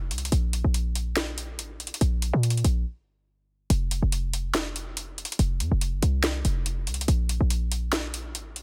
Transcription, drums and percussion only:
0.11 closed hi-hat
0.18 closed hi-hat
0.25 closed hi-hat
0.32 closed hi-hat
0.53 closed hi-hat
0.74 closed hi-hat
0.95 closed hi-hat
1.17 snare, closed hi-hat
1.38 closed hi-hat
1.59 closed hi-hat
1.80 closed hi-hat
1.87 closed hi-hat
1.94 closed hi-hat
2.01 closed hi-hat
2.22 closed hi-hat
2.43 closed hi-hat
2.50 closed hi-hat
2.57 closed hi-hat
2.64 closed hi-hat
3.70 closed hi-hat
3.91 closed hi-hat
4.12 closed hi-hat
4.33 closed hi-hat
4.55 snare, closed hi-hat
4.76 closed hi-hat
4.97 closed hi-hat
5.18 closed hi-hat
5.25 closed hi-hat
5.32 closed hi-hat
5.39 closed hi-hat
5.60 closed hi-hat
5.81 closed hi-hat
6.03 closed hi-hat
6.24 snare, closed hi-hat
6.45 closed hi-hat
6.66 closed hi-hat
6.87 closed hi-hat
6.94 closed hi-hat
7.01 closed hi-hat
7.08 closed hi-hat
7.29 closed hi-hat
7.50 closed hi-hat
7.72 closed hi-hat
7.93 snare, closed hi-hat
8.14 closed hi-hat
8.35 closed hi-hat
8.56 closed hi-hat

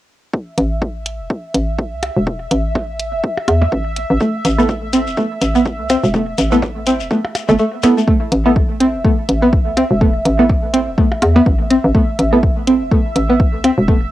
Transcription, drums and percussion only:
0.33 kick
0.58 closed hi-hat
0.82 kick
1.06 closed hi-hat
1.30 kick
1.54 closed hi-hat
1.79 kick
2.03 closed hi-hat, percussion blips
2.27 kick
2.51 closed hi-hat
2.75 kick, percussion blips
3.00 closed hi-hat
3.24 kick
3.38 percussion blips
3.48 closed hi-hat, percussion blips
3.62 percussion blips
3.72 kick
3.96 closed hi-hat
4.20 kick, shekere
4.45 closed hi-hat, shekere
4.59 shekere
4.69 kick, shekere
4.93 closed hi-hat, shekere
5.07 shekere
5.17 kick, shekere
5.42 closed hi-hat, shekere
5.55 shekere
5.65 kick, shekere
5.90 closed hi-hat, percussion blips, shekere
6.04 shekere
6.14 kick, shekere
6.38 closed hi-hat, shekere
6.52 shekere
6.62 kick, percussion blips, shekere
6.86 closed hi-hat, shekere
7.00 shekere
7.11 kick, shekere
7.25 percussion blips
7.35 closed hi-hat, percussion blips, shekere
7.48 percussion blips, shekere
7.58 shekere
7.83 closed hi-hat, percussion blips, shekere
7.98 shekere
8.08 kick
8.32 closed hi-hat
8.56 kick
8.80 closed hi-hat
9.04 kick
9.29 closed hi-hat
9.53 kick
9.77 closed hi-hat, percussion blips
10.01 kick
10.25 closed hi-hat
10.50 kick, percussion blips
10.74 closed hi-hat
10.98 kick
11.12 percussion blips
11.22 closed hi-hat, percussion blips
11.36 percussion blips
11.46 kick
11.71 closed hi-hat
11.95 kick
12.19 closed hi-hat
12.43 kick
12.67 closed hi-hat
12.91 kick
13.16 closed hi-hat
13.40 kick
13.64 closed hi-hat, percussion blips
13.88 kick

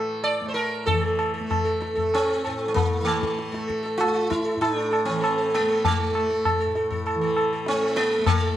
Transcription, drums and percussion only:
0.24 tabla na
0.56 tabla na
0.87 tabla tin, tabla ge
1.19 tabla na
1.51 tabla na, tabla ge
1.82 tabla te
1.98 tabla ge
2.14 tabla na
2.45 tabla na
2.76 tabla tin, tabla ge
3.07 tabla na
3.23 tabla ke
3.39 tabla te
3.54 tabla te
3.70 tabla ke
3.86 tabla te
4.01 tabla na
4.32 tabla ke
4.62 tabla na
4.93 tabla na
5.24 tabla na
5.54 tabla na
5.85 tabla tin, tabla ge
6.15 tabla na
6.45 tabla na, tabla ge
6.75 tabla te
6.91 tabla ge
7.07 tabla na
7.37 tabla na
7.66 tabla te
7.97 tabla te
8.26 tabla na, tabla ge

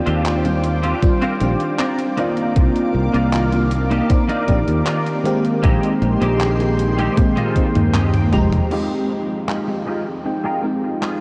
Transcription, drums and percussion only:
0.07 closed hi-hat
0.25 clap, closed hi-hat
0.45 closed hi-hat
0.64 closed hi-hat
0.83 closed hi-hat
1.02 kick, closed hi-hat
1.22 closed hi-hat
1.40 closed hi-hat
1.60 closed hi-hat
1.79 clap, closed hi-hat
1.99 closed hi-hat
2.18 closed hi-hat
2.37 closed hi-hat
2.56 kick, closed hi-hat
2.76 closed hi-hat
3.14 closed hi-hat
3.33 clap, closed hi-hat
3.52 closed hi-hat
3.71 closed hi-hat
3.91 closed hi-hat
4.10 kick, closed hi-hat
4.29 closed hi-hat
4.48 kick, closed hi-hat
4.68 closed hi-hat
4.86 clap, closed hi-hat
5.06 closed hi-hat
5.25 closed hi-hat
5.45 closed hi-hat
5.63 kick, closed hi-hat
5.83 closed hi-hat
6.02 closed hi-hat
6.22 closed hi-hat
6.40 clap, closed hi-hat
6.60 closed hi-hat
6.79 closed hi-hat
6.99 closed hi-hat
7.17 kick, closed hi-hat, high tom
7.37 closed hi-hat, high tom
7.56 kick, closed hi-hat
7.75 closed hi-hat, mid tom
7.94 clap, closed hi-hat, mid tom
8.14 closed hi-hat, mid tom
8.33 kick, closed hi-hat, mid tom
8.52 closed hi-hat, mid tom
8.71 crash
9.49 clap
11.03 clap

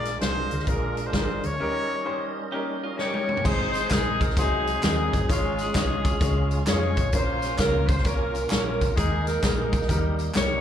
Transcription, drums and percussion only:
0.05 snare, closed hi-hat
0.21 snare, closed hi-hat
0.51 closed hi-hat
0.59 snare
0.67 kick, closed hi-hat
0.97 closed hi-hat
1.13 kick, snare, closed hi-hat
1.43 closed hi-hat
2.99 snare
3.14 high tom
3.29 mid tom
3.37 floor tom
3.45 kick, crash, tambourine
3.74 snare, closed hi-hat, tambourine
3.91 kick, snare, clap, closed hi-hat, tambourine
4.21 kick, closed hi-hat, tambourine
4.30 snare
4.37 kick, closed hi-hat, tambourine
4.67 closed hi-hat, tambourine
4.83 snare, clap, closed hi-hat, tambourine
5.13 kick, closed hi-hat, tambourine
5.30 kick, closed hi-hat, tambourine
5.59 snare, closed hi-hat, tambourine
5.75 kick, snare, clap, closed hi-hat, tambourine
6.05 kick, closed hi-hat, tambourine
6.21 kick, closed hi-hat, tambourine
6.51 closed hi-hat, tambourine
6.67 snare, clap, closed hi-hat, tambourine
6.97 kick, closed hi-hat, tambourine
7.12 kick, closed hi-hat, tambourine
7.42 snare, closed hi-hat, tambourine
7.59 kick, snare, clap, closed hi-hat, tambourine
7.88 kick, closed hi-hat, tambourine
7.98 snare
8.04 kick, closed hi-hat, tambourine
8.35 closed hi-hat, tambourine
8.50 snare, clap, closed hi-hat, tambourine
8.81 kick, closed hi-hat, tambourine
8.97 kick, closed hi-hat, tambourine
9.27 snare, closed hi-hat, tambourine
9.43 kick, snare, clap, closed hi-hat, tambourine
9.73 kick, closed hi-hat, tambourine
9.82 snare
9.89 kick, closed hi-hat, tambourine
10.19 closed hi-hat, tambourine
10.35 snare, clap, closed hi-hat, tambourine

